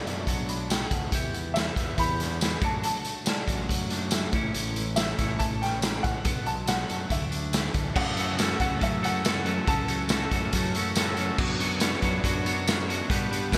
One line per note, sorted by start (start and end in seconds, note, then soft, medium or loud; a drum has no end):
0.00 0.50 B2 medium
0.00 0.26 F#3 medium
0.00 0.27 F#3 medium
0.00 0.26 B3 medium
0.00 0.28 D4 medium
0.00 0.27 F#4 medium
0.00 0.23 D5 medium
0.06 0.26 F#2 medium
0.06 0.91 A3 medium
0.06 snare soft
0.06 closed hi-hat medium
0.26 0.85 B1 medium
0.26 1.11 B2 medium
0.26 0.68 F#3 medium
0.26 1.11 B3 medium
0.26 1.13 D4 medium
0.26 1.12 F#4 medium
0.26 0.50 A5 medium
0.26 kick medium
0.26 closed hi-hat medium
0.49 1.17 D4 medium
0.49 0.71 B5 medium
0.49 closed hi-hat medium
0.69 1.13 F#3 medium
0.69 0.93 G5 medium
0.69 snare loud
0.69 closed hi-hat medium
0.69 tambourine loud
0.91 1.11 D2 medium
0.91 1.14 A3 medium
0.91 1.14 F#5 medium
0.91 kick medium
0.91 closed hi-hat medium
1.12 1.70 E2 loud
1.12 1.53 E3 medium
1.12 1.97 B3 medium
1.12 1.98 E4 medium
1.12 1.98 G4 medium
1.12 1.44 E5 medium
1.12 kick loud
1.12 closed hi-hat loud
1.34 1.75 B3 medium
1.34 closed hi-hat medium
1.54 1.97 E3 medium
1.54 1.99 E5 medium
1.54 snare medium
1.54 closed hi-hat medium
1.54 tambourine loud
1.76 1.96 E2 medium
1.76 2.63 B3 medium
1.76 kick medium
1.76 snare soft
1.76 closed hi-hat medium
1.97 2.56 E2 medium
1.97 2.40 E3 medium
1.97 2.61 B3 medium
1.97 2.62 E4 medium
1.97 2.62 G4 medium
1.97 2.39 B5 loud
1.97 kick medium
1.97 closed hi-hat medium
2.20 2.63 D4 medium
2.20 snare soft
2.20 closed hi-hat medium
2.41 2.62 E3 medium
2.41 snare loud
2.41 closed hi-hat medium
2.41 tambourine loud
2.61 2.81 F#2 medium
2.61 2.81 F#3 medium
2.61 3.48 A3 loud
2.61 3.47 D4 loud
2.61 3.46 F#4 medium
2.61 2.83 A5 medium
2.61 kick loud
2.61 closed hi-hat medium
2.82 3.24 F#3 medium
2.82 3.45 A5 medium
2.82 closed hi-hat medium
3.05 3.47 A3 medium
3.05 closed hi-hat medium
3.25 3.68 F#3 medium
3.25 3.71 D5 medium
3.25 snare loud
3.25 closed hi-hat medium
3.25 tambourine loud
3.47 3.67 A1 medium
3.47 4.32 F#3 medium
3.47 5.20 A3 medium
3.47 4.33 D4 medium
3.47 4.32 F#4 medium
3.47 kick medium
3.47 closed hi-hat medium
3.69 4.27 F#2 medium
3.69 4.11 F#3 medium
3.69 4.14 F#5 medium
3.69 kick medium
3.69 closed hi-hat medium
3.90 4.34 D4 medium
3.90 snare soft
3.90 closed hi-hat medium
4.11 4.34 F#3 medium
4.11 4.83 E5 medium
4.11 snare loud
4.11 closed hi-hat loud
4.11 tambourine loud
4.32 4.52 A1 medium
4.32 4.54 A2 medium
4.32 5.18 E3 loud
4.32 5.20 A3 loud
4.32 5.18 C#4 medium
4.32 5.17 E4 loud
4.32 kick loud
4.32 closed hi-hat medium
4.54 5.13 A1 loud
4.54 5.62 A2 medium
4.54 closed hi-hat loud
4.76 4.98 E3 medium
4.76 closed hi-hat medium
4.96 5.41 E3 medium
4.96 5.37 E5 medium
4.96 snare loud
4.96 closed hi-hat medium
4.96 tambourine loud
5.19 5.38 A1 medium
5.19 6.05 A2 medium
5.19 6.04 E3 medium
5.19 6.03 A3 medium
5.19 6.04 C#4 medium
5.19 6.03 E4 medium
5.19 kick medium
5.19 snare soft
5.19 closed hi-hat medium
5.39 5.98 A1 medium
5.39 5.81 E3 medium
5.39 5.62 A5 loud
5.39 kick medium
5.39 closed hi-hat medium
5.62 6.27 C#4 medium
5.62 6.02 G5 medium
5.62 snare soft
5.62 closed hi-hat medium
5.82 6.24 E3 medium
5.82 snare loud
5.82 closed hi-hat medium
5.82 tambourine loud
6.03 6.14 A2 medium
6.03 6.28 A3 medium
6.03 6.48 F#5 medium
6.03 kick medium
6.03 closed hi-hat medium
6.25 6.83 B1 loud
6.25 7.10 B2 medium
6.25 7.09 F#3 medium
6.25 7.10 B3 medium
6.25 7.10 D4 medium
6.25 kick loud
6.25 closed hi-hat loud
6.46 6.65 F#3 medium
6.46 6.67 A5 medium
6.46 closed hi-hat medium
6.66 7.10 F#3 medium
6.66 7.08 F#5 medium
6.66 snare loud
6.66 closed hi-hat medium
6.66 tambourine loud
6.89 7.09 F#2 medium
6.89 7.11 A3 medium
6.89 closed hi-hat medium
7.10 7.68 D2 medium
7.10 7.95 D3 medium
7.10 7.93 F#3 medium
7.10 7.93 A3 medium
7.10 7.95 D4 loud
7.10 7.72 E5 medium
7.10 kick medium
7.10 closed hi-hat medium
7.31 7.96 D4 medium
7.31 closed hi-hat medium
7.53 7.95 E3 medium
7.53 snare loud
7.53 closed hi-hat medium
7.53 tambourine loud
7.74 7.94 D2 medium
7.74 7.95 A3 medium
7.74 kick medium
7.74 closed hi-hat medium
7.94 8.19 F#2 medium
7.94 8.54 F#2 loud
7.94 8.18 C#3 loud
7.94 8.19 E3 loud
7.94 8.16 F#3 medium
7.94 8.19 A3 loud
7.94 8.19 C#4 loud
7.94 8.17 F#4 loud
7.94 11.35 A4 medium
7.94 8.19 A4 medium
7.94 8.59 F#5 medium
7.94 11.36 F#5 medium
7.94 11.35 E6 loud
7.94 kick loud
7.94 crash loud
8.16 8.37 F#2 medium
8.16 8.37 C#3 medium
8.16 8.39 E3 medium
8.16 8.37 F#3 medium
8.16 8.38 A3 medium
8.16 8.39 C#4 medium
8.16 8.39 F#4 medium
8.16 8.39 A4 medium
8.16 closed hi-hat medium
8.37 8.60 F#2 loud
8.37 8.59 C#3 medium
8.37 8.61 E3 loud
8.37 8.59 F#3 loud
8.37 8.60 A3 loud
8.37 8.61 C#4 loud
8.37 8.61 F#4 loud
8.37 8.61 A4 loud
8.37 snare loud
8.37 closed hi-hat loud
8.37 tambourine loud
8.50 snare soft
8.59 8.80 C#2 medium
8.59 8.80 F#2 medium
8.59 8.79 C#3 medium
8.59 8.80 E3 medium
8.59 8.79 F#3 medium
8.59 8.80 A3 loud
8.59 8.81 C#4 medium
8.59 8.80 F#4 loud
8.59 8.81 A4 medium
8.59 8.83 F#5 medium
8.59 kick medium
8.59 snare soft
8.59 closed hi-hat medium
8.80 9.01 F#2 medium
8.80 9.59 F#2 medium
8.80 9.01 C#3 loud
8.80 9.01 E3 medium
8.80 9.02 F#3 loud
8.80 9.01 A3 loud
8.80 9.02 C#4 loud
8.80 9.03 F#4 loud
8.80 9.01 A4 loud
8.80 8.88 E5 medium
8.80 kick medium
8.80 closed hi-hat medium
9.01 9.24 F#2 medium
9.01 9.23 C#3 medium
9.01 9.24 E3 medium
9.01 9.23 F#3 medium
9.01 9.24 A3 medium
9.01 9.26 C#4 medium
9.01 9.24 F#4 medium
9.01 9.24 A4 loud
9.01 9.70 F#5 medium
9.01 closed hi-hat medium
9.23 9.45 F#2 loud
9.23 9.44 C#3 loud
9.23 9.45 E3 medium
9.23 9.44 F#3 loud
9.23 9.45 A3 medium
9.23 9.46 C#4 loud
9.23 9.45 F#4 loud
9.23 9.45 A4 loud
9.23 snare loud
9.23 closed hi-hat loud
9.23 tambourine loud
9.44 9.67 F#2 loud
9.44 9.66 C#3 medium
9.44 9.67 E3 medium
9.44 9.66 F#3 loud
9.44 9.67 A3 medium
9.44 9.68 C#4 medium
9.44 9.66 F#4 medium
9.44 9.67 A4 loud
9.44 closed hi-hat medium
9.66 10.25 C#2 loud
9.66 9.88 F#2 loud
9.66 9.88 C#3 loud
9.66 9.89 E3 medium
9.66 9.87 F#3 loud
9.66 9.88 A3 loud
9.66 9.89 C#4 loud
9.66 9.88 F#4 loud
9.66 9.89 A4 loud
9.66 10.28 A5 loud
9.66 kick loud
9.66 closed hi-hat loud
9.88 10.10 F#2 medium
9.88 10.09 C#3 medium
9.88 10.09 E3 medium
9.88 10.09 F#3 loud
9.88 10.10 A3 medium
9.88 10.11 C#4 medium
9.88 10.11 F#4 loud
9.88 10.11 A4 medium
9.88 closed hi-hat medium
10.09 10.32 F#2 loud
10.09 10.32 C#3 loud
10.09 10.32 E3 loud
10.09 10.30 F#3 loud
10.09 10.32 A3 loud
10.09 10.33 C#4 loud
10.09 10.32 F#4 loud
10.09 10.33 A4 loud
10.09 snare loud
10.09 closed hi-hat loud
10.09 tambourine loud
10.31 10.51 F#2 medium
10.31 10.52 F#2 medium
10.31 10.53 C#3 medium
10.31 10.53 E3 medium
10.31 10.53 F#3 medium
10.31 10.54 A3 medium
10.31 10.54 C#4 medium
10.31 10.54 F#4 medium
10.31 10.54 A4 loud
10.31 kick medium
10.31 closed hi-hat medium
10.53 11.30 F#2 medium
10.53 10.74 F#2 loud
10.53 10.74 C#3 medium
10.53 10.74 E3 loud
10.53 10.75 F#3 loud
10.53 10.75 A3 loud
10.53 10.75 C#4 loud
10.53 10.77 F#4 loud
10.53 10.75 A4 loud
10.53 kick medium
10.53 closed hi-hat loud
10.75 10.96 F#2 medium
10.75 10.96 C#3 loud
10.75 10.97 E3 medium
10.75 10.96 F#3 medium
10.75 10.97 A3 loud
10.75 10.97 C#4 loud
10.75 10.97 F#4 loud
10.75 10.98 A4 medium
10.75 closed hi-hat medium
10.95 11.17 F#2 loud
10.95 11.17 C#3 loud
10.95 11.18 E3 medium
10.95 11.17 F#3 medium
10.95 11.19 A3 loud
10.95 11.18 C#4 loud
10.95 11.18 F#4 loud
10.95 11.18 A4 loud
10.95 snare loud
10.95 closed hi-hat loud
10.95 tambourine loud
11.17 11.38 F#2 medium
11.17 11.38 C#3 medium
11.17 11.38 E3 medium
11.17 11.37 F#3 medium
11.17 11.39 A3 medium
11.17 11.38 C#4 loud
11.17 11.39 F#4 loud
11.17 11.39 A4 loud
11.17 closed hi-hat medium
11.38 11.96 F#2 loud
11.38 11.59 F#3 medium
11.38 11.59 B3 medium
11.38 11.60 D4 loud
11.38 11.60 F#4 loud
11.38 13.09 B4 medium
11.38 11.59 C#5 loud
11.38 13.08 D5 medium
11.38 13.09 C#6 medium
11.38 kick loud
11.38 crash loud
11.59 11.80 F#3 medium
11.59 11.81 B3 medium
11.59 11.81 D4 medium
11.59 11.81 F#4 medium
11.59 11.81 C#5 medium
11.59 closed hi-hat medium
11.80 12.02 F#3 medium
11.80 12.02 B3 loud
11.80 12.03 D4 loud
11.80 12.04 F#4 loud
11.80 12.03 C#5 loud
11.80 snare loud
11.80 closed hi-hat loud
11.80 tambourine loud
11.94 snare soft
12.02 12.22 F#2 medium
12.02 12.23 F#3 medium
12.02 12.23 B3 medium
12.02 12.24 D4 medium
12.02 12.24 F#4 medium
12.02 12.25 C#5 loud
12.02 kick medium
12.02 snare soft
12.02 closed hi-hat medium
12.24 13.01 F#2 medium
12.24 12.45 F#3 medium
12.24 12.44 B3 loud
12.24 12.45 D4 loud
12.24 12.46 F#4 loud
12.24 12.45 C#5 loud
12.24 kick medium
12.24 closed hi-hat loud
12.45 12.66 F#3 medium
12.45 12.66 B3 medium
12.45 12.67 D4 medium
12.45 12.67 F#4 medium
12.45 12.67 C#5 loud
12.45 closed hi-hat medium
12.67 12.87 F#3 loud
12.67 12.87 B3 loud
12.67 12.87 D4 medium
12.67 12.88 F#4 loud
12.67 12.87 C#5 loud
12.67 snare loud
12.67 closed hi-hat medium
12.67 tambourine loud
12.88 13.09 F#3 medium
12.88 13.08 B3 loud
12.88 13.08 D4 medium
12.88 13.10 F#4 medium
12.88 13.09 C#5 loud
12.88 closed hi-hat medium
13.09 13.58 G2 medium
13.09 13.29 G3 loud
13.09 13.30 B3 loud
13.09 13.30 D4 loud
13.09 13.31 F#4 loud
13.09 13.58 G4 medium
13.09 13.30 G4 loud
13.09 13.30 B4 loud
13.09 13.58 F#5 medium
13.09 13.58 B5 loud
13.09 kick loud
13.09 closed hi-hat loud
13.30 13.51 G3 medium
13.30 13.52 B3 medium
13.30 13.52 D4 medium
13.30 13.53 F#4 medium
13.30 13.52 G4 loud
13.30 13.52 B4 medium
13.30 closed hi-hat medium
13.52 13.58 G3 loud
13.52 13.58 B3 loud
13.52 13.58 D4 loud
13.52 13.58 F#4 loud
13.52 13.58 G4 loud
13.52 13.58 B4 loud
13.52 kick medium
13.52 snare loud
13.52 closed hi-hat medium
13.52 tambourine loud